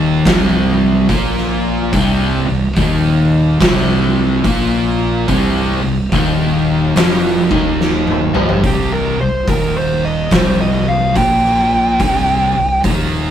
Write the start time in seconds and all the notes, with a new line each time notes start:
Already playing: D#1 D#2 D#3
0.25 C1 C2 C3, kick, snare, open hi-hat
1.09 A#1 A#2 A#3, kick, open hi-hat
1.38 snare
1.93 C1 C2 C3, kick, open hi-hat
2.48 C1 C2
2.76 D#1 D#2 D#3, kick, open hi-hat
3.60 C1 C2 C3, kick, snare, open hi-hat
4.44 A#1 A#2 A#3, kick, open hi-hat
5.27 C1 C2 C3, kick, open hi-hat
5.83 C1 C2
6.12 D#1 D#2 D#3, kick, open hi-hat
6.95 F1 F2 F3, snare, open hi-hat
7.51 D#1 D#2 D#3, kick
7.81 snare
8.07 high tom
8.35 G1 G2 G3, mid tom
8.49 floor tom
8.64 C1 C2 C3 G4, kick, open hi-hat
8.92 A#4
9.19 C1 C2 C5
9.47 D#1 D#2 D#3 A#4, kick, open hi-hat
9.78 C5
10.05 D#5
10.31 C1 C2 C3 C5, kick, snare, open hi-hat
10.61 D#5
10.88 F5
11.15 A#1 A#2 A#3 G5, kick, open hi-hat
11.45 snare
11.99 C1 C2 C3, kick, open hi-hat
12.55 C1 C2
12.84 D#1 D#2 D#3, kick, open hi-hat